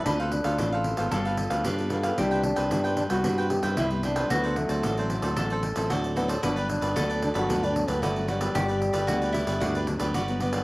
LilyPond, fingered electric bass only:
\new Staff \with { instrumentName = "Fingered electric bass" } { \clef bass \time 4/4 \key g \major \tempo 4 = 113 d,8. d,16 a,,8. aes,,16 g,,8. d,16 g,4 | c,8. c,16 g,8. c,16 g,8. g,16 c,4 | d,8. d,16 a,,8. d,16 a,,8. a,,16 d,4 | g,,8. g,,16 d,8. g,,16 d,8. d,16 g,,4 |
g,,8. g,,16 d,8. g,,16 d,8. d,16 g,,4 | }